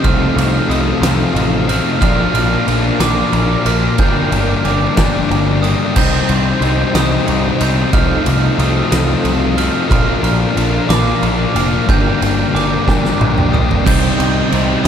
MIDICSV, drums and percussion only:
0, 0, Header, 1, 2, 480
1, 0, Start_track
1, 0, Key_signature, -3, "minor"
1, 0, Tempo, 657895
1, 31, Time_signature, 6, 3, 24, 8
1, 10856, End_track
2, 0, Start_track
2, 0, Title_t, "Drums"
2, 31, Note_on_c, 9, 51, 108
2, 32, Note_on_c, 9, 36, 126
2, 104, Note_off_c, 9, 51, 0
2, 105, Note_off_c, 9, 36, 0
2, 280, Note_on_c, 9, 51, 87
2, 353, Note_off_c, 9, 51, 0
2, 519, Note_on_c, 9, 51, 98
2, 592, Note_off_c, 9, 51, 0
2, 754, Note_on_c, 9, 38, 114
2, 754, Note_on_c, 9, 51, 118
2, 827, Note_off_c, 9, 38, 0
2, 827, Note_off_c, 9, 51, 0
2, 994, Note_on_c, 9, 51, 103
2, 1067, Note_off_c, 9, 51, 0
2, 1234, Note_on_c, 9, 51, 89
2, 1307, Note_off_c, 9, 51, 0
2, 1472, Note_on_c, 9, 36, 125
2, 1473, Note_on_c, 9, 51, 127
2, 1545, Note_off_c, 9, 36, 0
2, 1546, Note_off_c, 9, 51, 0
2, 1713, Note_on_c, 9, 51, 88
2, 1786, Note_off_c, 9, 51, 0
2, 1953, Note_on_c, 9, 51, 97
2, 2026, Note_off_c, 9, 51, 0
2, 2192, Note_on_c, 9, 38, 109
2, 2192, Note_on_c, 9, 51, 119
2, 2265, Note_off_c, 9, 38, 0
2, 2265, Note_off_c, 9, 51, 0
2, 2429, Note_on_c, 9, 51, 102
2, 2502, Note_off_c, 9, 51, 0
2, 2668, Note_on_c, 9, 51, 84
2, 2741, Note_off_c, 9, 51, 0
2, 2905, Note_on_c, 9, 51, 116
2, 2909, Note_on_c, 9, 36, 122
2, 2978, Note_off_c, 9, 51, 0
2, 2982, Note_off_c, 9, 36, 0
2, 3153, Note_on_c, 9, 51, 88
2, 3226, Note_off_c, 9, 51, 0
2, 3391, Note_on_c, 9, 51, 87
2, 3464, Note_off_c, 9, 51, 0
2, 3628, Note_on_c, 9, 38, 127
2, 3628, Note_on_c, 9, 51, 99
2, 3630, Note_on_c, 9, 36, 89
2, 3701, Note_off_c, 9, 38, 0
2, 3701, Note_off_c, 9, 51, 0
2, 3703, Note_off_c, 9, 36, 0
2, 3876, Note_on_c, 9, 51, 92
2, 3949, Note_off_c, 9, 51, 0
2, 4113, Note_on_c, 9, 51, 75
2, 4186, Note_off_c, 9, 51, 0
2, 4347, Note_on_c, 9, 49, 125
2, 4351, Note_on_c, 9, 36, 126
2, 4420, Note_off_c, 9, 49, 0
2, 4424, Note_off_c, 9, 36, 0
2, 4588, Note_on_c, 9, 51, 77
2, 4661, Note_off_c, 9, 51, 0
2, 4830, Note_on_c, 9, 51, 93
2, 4903, Note_off_c, 9, 51, 0
2, 5071, Note_on_c, 9, 38, 114
2, 5071, Note_on_c, 9, 51, 121
2, 5144, Note_off_c, 9, 38, 0
2, 5144, Note_off_c, 9, 51, 0
2, 5309, Note_on_c, 9, 51, 98
2, 5382, Note_off_c, 9, 51, 0
2, 5549, Note_on_c, 9, 51, 86
2, 5622, Note_off_c, 9, 51, 0
2, 5786, Note_on_c, 9, 51, 126
2, 5788, Note_on_c, 9, 36, 123
2, 5859, Note_off_c, 9, 51, 0
2, 5861, Note_off_c, 9, 36, 0
2, 6027, Note_on_c, 9, 51, 87
2, 6100, Note_off_c, 9, 51, 0
2, 6270, Note_on_c, 9, 51, 94
2, 6343, Note_off_c, 9, 51, 0
2, 6509, Note_on_c, 9, 38, 117
2, 6509, Note_on_c, 9, 51, 121
2, 6582, Note_off_c, 9, 38, 0
2, 6582, Note_off_c, 9, 51, 0
2, 6747, Note_on_c, 9, 51, 98
2, 6820, Note_off_c, 9, 51, 0
2, 6989, Note_on_c, 9, 51, 86
2, 7062, Note_off_c, 9, 51, 0
2, 7230, Note_on_c, 9, 36, 127
2, 7234, Note_on_c, 9, 51, 125
2, 7303, Note_off_c, 9, 36, 0
2, 7307, Note_off_c, 9, 51, 0
2, 7470, Note_on_c, 9, 51, 83
2, 7543, Note_off_c, 9, 51, 0
2, 7713, Note_on_c, 9, 51, 94
2, 7786, Note_off_c, 9, 51, 0
2, 7954, Note_on_c, 9, 38, 114
2, 7954, Note_on_c, 9, 51, 113
2, 8027, Note_off_c, 9, 38, 0
2, 8027, Note_off_c, 9, 51, 0
2, 8192, Note_on_c, 9, 51, 90
2, 8265, Note_off_c, 9, 51, 0
2, 8433, Note_on_c, 9, 51, 82
2, 8506, Note_off_c, 9, 51, 0
2, 8673, Note_on_c, 9, 36, 127
2, 8676, Note_on_c, 9, 51, 114
2, 8746, Note_off_c, 9, 36, 0
2, 8749, Note_off_c, 9, 51, 0
2, 8917, Note_on_c, 9, 51, 84
2, 8990, Note_off_c, 9, 51, 0
2, 9164, Note_on_c, 9, 51, 85
2, 9237, Note_off_c, 9, 51, 0
2, 9395, Note_on_c, 9, 36, 86
2, 9398, Note_on_c, 9, 38, 77
2, 9468, Note_off_c, 9, 36, 0
2, 9471, Note_off_c, 9, 38, 0
2, 9519, Note_on_c, 9, 38, 65
2, 9592, Note_off_c, 9, 38, 0
2, 9639, Note_on_c, 9, 48, 101
2, 9712, Note_off_c, 9, 48, 0
2, 9759, Note_on_c, 9, 47, 81
2, 9832, Note_off_c, 9, 47, 0
2, 9881, Note_on_c, 9, 45, 103
2, 9954, Note_off_c, 9, 45, 0
2, 10003, Note_on_c, 9, 43, 94
2, 10075, Note_off_c, 9, 43, 0
2, 10116, Note_on_c, 9, 36, 127
2, 10120, Note_on_c, 9, 57, 118
2, 10189, Note_off_c, 9, 36, 0
2, 10193, Note_off_c, 9, 57, 0
2, 10359, Note_on_c, 9, 51, 89
2, 10432, Note_off_c, 9, 51, 0
2, 10596, Note_on_c, 9, 51, 95
2, 10669, Note_off_c, 9, 51, 0
2, 10856, End_track
0, 0, End_of_file